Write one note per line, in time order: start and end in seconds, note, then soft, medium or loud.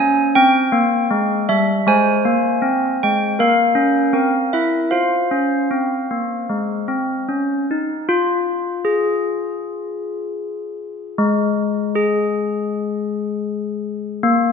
0.00 0.29 C#4 medium
0.00 1.82 C5 soft
0.00 0.34 G#5 medium
0.35 0.66 C4 medium
0.35 1.44 G5 loud
0.72 1.02 A#3 medium
1.11 1.40 G#3 medium
1.49 1.78 G3 medium
1.49 1.84 E5 medium
1.87 2.16 G#3 medium
1.87 3.34 C5 soft
1.87 2.96 G#5 medium
2.25 2.55 A#3 medium
2.62 2.92 C4 medium
3.03 3.32 G#3 medium
3.03 3.37 G5 medium
3.39 3.69 A#3 medium
3.39 4.11 A#4 soft
3.39 4.50 F5 medium
3.75 4.06 C#4 medium
4.13 4.45 C4 medium
4.13 4.88 A#4 soft
4.53 4.85 E4 soft
4.53 4.91 E5 medium
4.91 5.24 F4 medium
4.91 8.06 C5 soft
4.91 7.66 F5 medium
5.31 5.63 C#4 medium
5.71 6.03 C4 soft
6.11 6.43 A#3 soft
6.50 6.82 G#3 soft
6.88 7.21 C4 medium
7.29 7.61 C#4 soft
7.71 8.02 D#4 soft
8.09 11.13 F4 medium
8.85 11.17 G#4 medium
11.18 14.20 G#3 medium
11.95 14.24 G#4 medium
14.23 14.52 A#3 medium